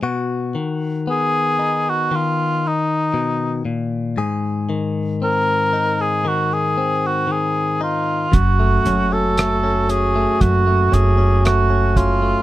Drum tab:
HH |--------|--------|xxxxxxxx|
SD |--------|--------|--r---r-|
BD |--------|--------|o---o--o|